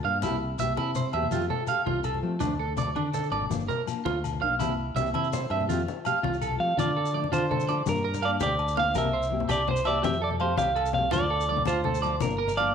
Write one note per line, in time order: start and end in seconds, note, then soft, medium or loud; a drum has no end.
0.04 0.24 G2 medium
0.04 0.15 A#3 medium
0.04 0.16 F4 medium
0.04 0.17 F5 medium
0.04 muted steel-string acoustic guitar stroke medium
0.22 0.56 C2 medium
0.22 0.34 A#3 medium
0.22 0.34 C4 medium
0.22 0.36 E4 medium
0.22 0.34 G4 medium
0.22 muted steel-string acoustic guitar stroke medium
0.22 high conga medium
0.22 low conga soft
0.22 low agogo medium
0.22 shekere medium
0.31 low conga medium
0.59 0.76 C2 medium
0.59 0.70 E3 medium
0.59 0.70 A#3 medium
0.59 0.71 C4 medium
0.59 0.71 G4 medium
0.59 0.72 E5 medium
0.59 low conga medium
0.59 shekere medium
0.77 1.11 C3 medium
0.77 0.90 E4 medium
0.77 high conga medium
0.77 low conga soft
0.77 low agogo medium
0.95 1.08 C5 medium
0.95 low conga medium
0.95 shekere medium
1.13 1.31 E2 medium
1.13 1.24 E3 medium
1.13 1.25 A#3 medium
1.13 1.25 C4 medium
1.13 1.26 G4 medium
1.13 1.26 E5 medium
1.13 low agogo medium
1.23 low conga medium
1.31 1.48 F2 medium
1.31 1.43 F3 medium
1.31 1.43 A3 medium
1.31 1.43 C4 medium
1.31 1.45 F4 medium
1.31 1.44 G4 medium
1.31 high conga medium
1.31 shekere medium
1.50 1.63 A4 medium
1.50 low conga medium
1.60 low conga soft
1.67 1.79 A3 medium
1.67 1.80 G4 medium
1.67 1.81 F5 medium
1.67 muted steel-string acoustic guitar stroke medium
1.67 low agogo medium
1.67 shekere medium
1.78 low conga soft
1.86 2.21 C2 medium
1.86 1.99 F4 medium
1.86 high conga medium
1.86 low conga medium
2.04 2.17 A4 medium
2.04 low agogo medium
2.04 shekere medium
2.15 low conga medium
2.23 2.34 F3 medium
2.23 2.43 F3 medium
2.23 2.34 A3 medium
2.23 2.34 C4 medium
2.23 2.35 G4 medium
2.39 2.76 D2 loud
2.39 2.51 F3 medium
2.39 2.52 A3 medium
2.39 2.53 D4 medium
2.39 2.52 F4 medium
2.39 muted steel-string acoustic guitar stroke medium
2.39 high conga medium
2.39 low conga soft
2.39 low agogo medium
2.39 shekere medium
2.51 low conga medium
2.59 2.72 A4 medium
2.75 2.95 D2 medium
2.75 2.87 F3 medium
2.75 2.88 A3 medium
2.75 2.88 D4 medium
2.75 2.89 F4 medium
2.75 2.91 D5 medium
2.75 low conga medium
2.75 shekere medium
2.96 3.30 D3 medium
2.96 3.09 D4 medium
2.96 high conga medium
2.96 low conga soft
2.96 low agogo medium
3.14 3.27 A4 medium
3.14 low conga medium
3.14 shekere medium
3.23 shekere soft
3.30 3.49 G#1 medium
3.30 3.43 A3 medium
3.30 3.43 D4 medium
3.30 3.44 F4 medium
3.30 3.45 D5 medium
3.30 muted steel-string acoustic guitar stroke medium
3.30 low agogo medium
3.42 low conga medium
3.49 3.67 G1 medium
3.49 3.61 F3 medium
3.49 3.61 A#3 medium
3.49 3.62 D4 medium
3.49 3.62 F4 medium
3.49 high conga medium
3.49 shekere medium
3.60 shekere soft
3.68 3.81 A#4 medium
3.68 low conga medium
3.68 shekere soft
3.79 low conga soft
3.86 3.97 F3 medium
3.86 3.97 A#3 medium
3.86 3.98 D4 medium
3.86 3.98 F4 medium
3.86 low agogo medium
3.86 shekere medium
4.05 4.39 D2 medium
4.05 4.18 F4 medium
4.05 high conga medium
4.05 low conga medium
4.24 low agogo medium
4.24 shekere medium
4.33 low conga medium
4.40 4.59 B1 medium
4.40 4.52 F3 medium
4.40 4.53 A#3 medium
4.40 4.53 D4 medium
4.40 4.53 F4 medium
4.40 4.54 F5 medium
4.59 4.94 C2 loud
4.59 4.70 E3 medium
4.59 4.71 A#3 medium
4.59 4.71 C4 medium
4.59 4.72 E4 medium
4.59 4.72 G4 medium
4.59 high conga medium
4.59 low conga soft
4.59 low agogo medium
4.59 shekere medium
4.69 low conga medium
4.95 5.12 C2 medium
4.95 5.07 E3 medium
4.95 5.08 A#3 medium
4.95 5.08 C4 medium
4.95 5.08 G4 medium
4.95 5.09 E5 medium
4.95 low conga medium
4.95 shekere medium
5.06 low conga soft
5.06 shekere soft
5.13 5.48 C3 medium
5.13 5.27 E4 medium
5.13 high conga medium
5.13 low agogo medium
5.24 shekere soft
5.33 5.46 C5 medium
5.33 low conga medium
5.33 shekere medium
5.50 5.67 G2 medium
5.50 5.62 E3 medium
5.50 5.63 A#3 medium
5.50 5.63 C4 medium
5.50 5.64 E5 medium
5.50 low agogo medium
5.54 5.63 G4 medium
5.61 low conga medium
5.69 5.86 F2 medium
5.69 5.80 F3 medium
5.69 5.81 A3 medium
5.69 5.81 C4 medium
5.69 5.82 F4 medium
5.69 5.81 G4 medium
5.69 high conga medium
5.69 shekere medium
5.79 low conga soft
5.88 low conga medium
5.88 shekere soft
6.04 6.16 F3 medium
6.04 6.16 A3 medium
6.04 6.17 C4 medium
6.04 6.17 G4 medium
6.04 6.19 F5 medium
6.04 low conga soft
6.04 low agogo medium
6.04 shekere medium
6.23 6.57 C2 medium
6.23 6.36 F4 medium
6.23 high conga medium
6.23 low conga medium
6.33 low conga soft
6.33 shekere soft
6.42 6.54 A4 medium
6.42 low conga soft
6.42 low agogo medium
6.42 shekere medium
6.52 low conga medium
6.58 6.70 F3 medium
6.58 6.77 F3 medium
6.58 6.70 A3 medium
6.58 6.71 C4 medium
6.58 6.71 G4 medium
6.58 6.79 F5 medium
6.58 low conga soft
6.70 low conga soft
6.77 7.29 D3 medium
6.77 6.89 F3 medium
6.77 6.89 A3 medium
6.77 6.89 D4 medium
6.77 6.91 F4 medium
6.77 6.90 F4 medium
6.77 7.35 D5 medium
6.77 high conga medium
6.77 low conga soft
6.77 low agogo medium
6.77 shekere medium
6.88 low conga medium
6.97 7.09 A4 medium
7.05 shekere medium
7.14 7.25 F3 medium
7.14 7.25 A3 medium
7.14 7.26 D4 medium
7.14 7.26 F4 medium
7.14 7.27 D5 medium
7.24 low conga medium
7.32 7.83 D3 medium
7.32 7.45 F4 medium
7.32 7.88 C5 medium
7.32 high conga medium
7.32 low agogo medium
7.32 shekere medium
7.51 7.63 A4 medium
7.51 low conga medium
7.60 shekere medium
7.67 7.79 F3 medium
7.67 7.79 A3 medium
7.67 7.80 D4 medium
7.67 7.80 F4 medium
7.67 7.81 D5 medium
7.67 low agogo medium
7.67 shekere soft
7.86 8.38 G2 medium
7.86 7.97 A#3 medium
7.86 7.98 D4 medium
7.86 7.98 F4 medium
7.86 8.25 A#4 medium
7.86 high conga medium
7.86 low conga loud
7.86 shekere medium
7.95 shekere soft
8.04 8.17 A#4 medium
8.04 low conga soft
8.14 low conga medium
8.14 shekere medium
8.22 8.33 A#3 medium
8.22 8.34 D4 medium
8.22 8.35 F4 medium
8.22 8.30 D5 medium
8.22 8.35 F5 medium
8.22 low agogo medium
8.40 8.92 D2 loud
8.40 8.54 G4 medium
8.40 8.76 D5 medium
8.40 high conga loud
8.40 low conga medium
8.40 shekere medium
8.59 low conga soft
8.59 low agogo medium
8.68 low conga soft
8.68 shekere medium
8.75 8.87 A#3 medium
8.75 8.88 D4 medium
8.75 8.90 F5 medium
8.75 low conga medium
8.79 8.97 F5 medium
8.94 9.46 C2 medium
8.94 9.06 E3 medium
8.94 9.06 A#3 medium
8.94 9.06 C4 medium
8.94 9.07 G4 medium
8.94 9.08 A#4 medium
8.94 9.47 E5 loud
8.94 high conga medium
8.94 low conga soft
8.94 low agogo medium
8.94 shekere medium
9.05 low conga medium
9.13 9.26 C5 medium
9.23 shekere medium
9.30 9.42 E3 medium
9.30 9.43 A#3 medium
9.30 9.43 C4 medium
9.30 9.43 G4 medium
9.40 low conga medium
9.49 10.00 C2 medium
9.49 9.62 G4 medium
9.49 9.67 D5 medium
9.49 high conga medium
9.49 low agogo medium
9.49 shekere medium
9.68 9.81 C5 medium
9.68 9.88 C5 medium
9.68 low conga loud
9.76 shekere medium
9.84 9.96 E3 medium
9.84 9.97 A#3 medium
9.84 9.97 C4 medium
9.84 9.98 G4 medium
9.84 10.05 D5 medium
9.84 9.98 E5 medium
9.84 low agogo medium
9.84 shekere soft
10.03 10.55 F2 medium
10.03 10.15 A3 medium
10.03 10.16 C4 medium
10.03 10.16 G4 medium
10.03 10.23 E5 loud
10.03 muted steel-string acoustic guitar stroke medium
10.03 high conga loud
10.03 low conga loud
10.03 shekere medium
10.13 shekere soft
10.22 10.35 A4 medium
10.22 10.29 D5 medium
10.22 low conga soft
10.31 low conga medium
10.40 10.51 F3 medium
10.40 10.52 A3 medium
10.40 10.52 C4 medium
10.40 10.53 G4 medium
10.40 10.58 C5 medium
10.40 10.53 F5 medium
10.40 low agogo medium
10.57 11.09 C2 loud
10.57 10.71 G4 medium
10.57 10.92 F5 medium
10.57 high conga loud
10.57 low conga medium
10.57 shekere medium
10.76 10.89 A4 medium
10.76 low conga soft
10.76 low agogo medium
10.85 low conga soft
10.85 shekere medium
10.93 11.06 F3 medium
10.93 11.06 A3 medium
10.93 11.07 C4 medium
10.93 11.13 F5 medium
10.93 low conga loud
10.98 11.07 G4 medium
11.11 11.63 D2 loud
11.11 11.24 F3 medium
11.11 11.24 A3 medium
11.11 11.24 D4 medium
11.11 11.25 F4 medium
11.11 11.24 F4 medium
11.11 11.64 D5 medium
11.11 high conga medium
11.11 low conga soft
11.11 low agogo medium
11.11 shekere medium
11.20 low conga medium
11.30 11.43 A4 medium
11.40 shekere medium
11.49 11.60 F3 medium
11.49 11.61 A3 medium
11.49 11.61 D4 medium
11.49 11.62 F4 medium
11.49 11.62 D5 medium
11.57 low conga medium
11.66 12.18 D2 medium
11.66 11.80 F4 medium
11.66 12.22 C5 medium
11.66 high conga medium
11.66 low agogo medium
11.66 shekere loud
11.84 11.98 A4 medium
11.84 low conga loud
11.95 shekere medium
12.02 12.14 F3 medium
12.02 12.15 A3 medium
12.02 12.15 D4 medium
12.02 12.15 D5 medium
12.02 low agogo medium
12.02 shekere soft
12.06 12.16 F4 medium
12.20 12.72 G1 medium
12.20 12.32 F3 medium
12.20 12.33 A#3 medium
12.20 12.33 D4 medium
12.20 12.33 F4 medium
12.20 12.55 A#4 medium
12.20 high conga loud
12.20 low conga loud
12.20 shekere medium
12.30 shekere soft
12.38 12.52 A#4 medium
12.38 low conga soft
12.48 low conga medium
12.48 shekere medium
12.57 12.68 F3 medium
12.57 12.69 A#3 medium
12.57 12.69 D4 medium
12.57 12.70 F4 medium
12.57 12.74 D5 loud
12.57 12.70 F5 medium
12.57 low agogo medium